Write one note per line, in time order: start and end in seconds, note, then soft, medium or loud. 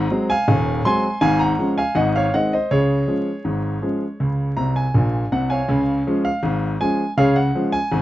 0.00 0.27 F#5 medium
0.00 0.27 A#5 loud
0.11 0.31 F#3 medium
0.11 0.32 G#3 medium
0.11 0.32 C4 medium
0.30 0.82 F5 medium
0.30 0.82 G#5 loud
0.48 0.80 D#1 medium
0.48 0.80 D#2 medium
0.85 1.06 F#3 medium
0.85 1.06 G#3 medium
0.85 1.06 C4 medium
0.85 1.20 G#5 medium
0.85 1.20 C6 loud
1.21 1.53 G#1 medium
1.21 1.53 G#2 loud
1.21 1.40 F5 medium
1.21 1.40 G#5 loud
1.39 1.75 F#5 medium
1.39 1.70 A#5 loud
1.59 1.79 F3 medium
1.59 1.79 G#3 medium
1.59 1.80 C#4 medium
1.78 1.96 F5 medium
1.78 1.96 G#5 medium
1.95 2.27 G#1 medium
1.95 2.27 G#2 medium
1.95 2.14 D#5 medium
1.95 2.14 F#5 medium
2.16 2.33 C#5 medium
2.16 2.34 F5 loud
2.34 2.54 D#3 medium
2.34 2.54 G#3 soft
2.34 2.55 C4 medium
2.34 2.52 D#5 medium
2.34 2.52 F#5 medium
2.53 2.71 C5 medium
2.53 2.71 D#5 medium
2.71 3.03 C#2 medium
2.71 3.03 C#3 medium
2.71 4.92 G#4 medium
2.71 4.91 C#5 medium
3.08 3.28 F3 soft
3.08 3.28 G#3 soft
3.08 3.29 C#4 medium
3.45 3.77 G#1 medium
3.45 3.77 G#2 medium
3.82 4.03 F3 soft
3.82 4.03 G#3 soft
3.82 4.04 C#4 medium
4.20 4.52 C#2 medium
4.20 4.52 C#3 medium
4.57 4.85 C2 medium
4.57 4.85 C3 medium
4.57 4.76 A#5 medium
4.76 5.30 G#5 medium
4.94 5.23 A#1 medium
4.94 5.23 A#2 medium
5.32 5.60 C2 medium
5.32 5.60 C3 medium
5.32 5.51 F#5 medium
5.50 6.21 C#5 medium
5.50 6.22 F5 medium
5.50 6.21 G#5 medium
5.68 6.01 C#2 medium
5.68 6.01 C#3 medium
6.07 6.27 F3 medium
6.07 6.27 G#3 medium
6.07 6.28 C#4 medium
6.25 6.69 F5 medium
6.43 6.75 G#1 medium
6.43 6.75 G#2 medium
6.81 7.01 F3 medium
6.81 7.01 G#3 medium
6.81 7.02 C#4 medium
6.81 7.10 G#5 medium
7.17 7.49 C#2 medium
7.17 7.49 C#3 loud
7.17 7.36 G#4 medium
7.17 7.36 C#5 medium
7.17 7.36 F5 loud
7.36 7.71 F#5 medium
7.55 7.75 F3 medium
7.55 7.76 G#3 medium
7.55 7.76 C#4 medium
7.72 8.02 G#5 loud
7.91 8.02 G#1 medium
7.91 8.02 G#2 medium